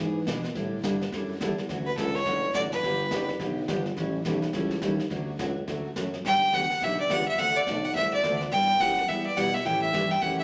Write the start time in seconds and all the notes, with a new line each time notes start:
0.00 G#2 E3 B3 D4 G#4
0.26 B2 E3 B3 D4 G#4, kick, snare, hi-hat pedal
0.44 snare
0.55 A2 D3 G3 D4 E4 A4, brush sweep, kick, snare
0.83 G2 D3 G3 D4 E4 A4, kick, snare, hi-hat pedal
1.01 snare
1.12 F#2 D3 G3 D4 E4 A4, brush sweep, kick, snare
1.40 E2 D3 G3 D4 E4 A4, kick, snare, hi-hat pedal
1.58 snare
1.69 D2 D3 F#3 A3 C#4 F#4, brush sweep, kick, snare
1.86 B4
1.97 C#2 D3 F#3 A3 C#4 F#4 A4, kick, snare, hi-hat pedal
2.15 C#5, snare
2.26 F#1 D3 F#3 A3 C#4 F#4, brush sweep, kick, snare
2.53 A1 D3 F#3 A3 C#4 F#4 D5, kick, snare, hi-hat pedal
2.72 B4, snare
2.83 G1 D3 F#3 B3 D4 G4, brush sweep, kick, snare
3.11 F#1 D3 F#3 B3 D4 G4, kick, snare, hi-hat pedal
3.28 snare
3.39 B1 D3 F#3 B3 D4 G4, brush sweep, kick, snare
3.68 G1 D3 F#3 B3 D4 G4, kick, snare, hi-hat pedal
3.86 snare
3.96 A1 E3 G3 C#4 E4 A4, brush sweep, kick, snare
4.25 B1 E3 G3 C#4 E4 A4, kick, snare, hi-hat pedal
4.42 snare
4.53 C#2 E3 G3 C#4 E4 A4, brush sweep, kick, snare
4.71 snare
4.82 D#2 E3 G3 C#4 E4 A4, kick, snare, hi-hat pedal
4.99 snare
5.10 D2 D3 F#3 A3 C#4 F#4, brush sweep, kick, snare
5.39 C#2 D3 F#3 A3 C#4 F#4, kick, snare, hi-hat pedal
5.67 D2 D3 F#3 A3 C#4 F#4, brush sweep, kick, snare
5.96 F#2 D3 F#3 A3 C#4 F#4, kick, snare, hi-hat pedal
6.13 snare
6.24 G2 D3 F#3 B3 D4 G4 G5, brush sweep, kick, snare
6.42 G2
6.52 D2 D3 F#3 B3 D4 G4 F#5, kick, snare, hi-hat pedal
6.70 D2, snare
6.81 B1 D3 F#3 B3 D4 G4 E5, brush sweep, kick, snare
6.99 B1 D5
7.09 C#2 D3 F#3 B3 D4 G4 F#5, kick, snare, hi-hat pedal
7.28 C#2 E5
7.38 D2 D3 A3 C4 F#4 A4 F#5, brush sweep, kick, snare
7.56 D2 D5
7.66 B1 D3 A3 C4 F#4 A4, kick, snare, hi-hat pedal
7.85 F#5
7.95 C2 D3 A3 C4 F#4 A4 E5, brush sweep, kick, snare
8.14 D5
8.23 D2 D3 A3 C4 F#4 A4, kick, snare, hi-hat pedal
8.41 snare
8.52 G2 G3 B3 E4 G4 G5, brush sweep, kick, snare
8.80 F#2 G3 B3 E4 G4 F#5, kick, snare, hi-hat pedal
8.97 snare
9.08 E2 G3 B3 E4 G4 E5, brush sweep, kick, snare
9.26 E2 D5
9.36 B2 G3 B3 E4 G4 F#5, kick, snare, hi-hat pedal
9.54 E5, snare
9.65 A2 C#3 E3 A3 C#4 G4 G5, brush sweep, kick, snare
9.82 E5
9.92 G2 C#3 E3 A3 C#4 G4, kick, snare, hi-hat pedal
10.11 G5, snare
10.21 F#2 C#3 E3 A3 C#4 G4 F#5, brush sweep, kick, snare
10.39 E5